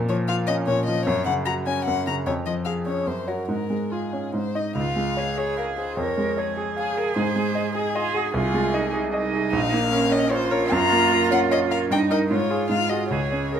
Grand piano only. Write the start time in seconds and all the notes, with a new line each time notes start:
Already playing: A#2
0.09 F3
0.29 F4
0.48 C#4
0.67 A#2
0.88 F3
1.07 F#2
1.27 C#3
1.46 F#4
1.66 C#4
1.87 F#2
2.07 C#3
2.26 F2
2.46 F3
2.66 G#4
2.86 C#4
3.07 F#2
3.27 F#4 C#5
3.48 G#2
3.70 G#3
3.92 F4
4.13 C#4
4.33 G#2
4.55 D#4 D#5
4.75 C#2
4.96 G#3
5.17 C#5
5.37 G#4
5.57 F5
5.78 G#4
5.97 F2
6.17 G#3
6.37 C#5
6.57 G#4
6.77 F5
6.97 G#4
7.16 G#2
7.36 G#3
7.55 D#5
7.75 G#4
7.95 D#5
8.15 G#4
8.34 C2
8.54 G#3
8.74 D#5
8.93 G#4
9.14 D#5
9.33 G#4
9.53 A#1
9.73 A#3
9.92 A#4
10.12 C#4
10.31 C#5
10.51 A#4
10.72 F#2
10.92 A#3
11.12 A#4
11.31 C#4
11.51 C#5
11.71 A#4
11.91 G2
12.10 D#4 A#4
12.31 G#2
12.50 F4 G#4
12.69 G#2
12.90 F#4 G#4
13.11 C#2
13.32 C#4
13.52 G#4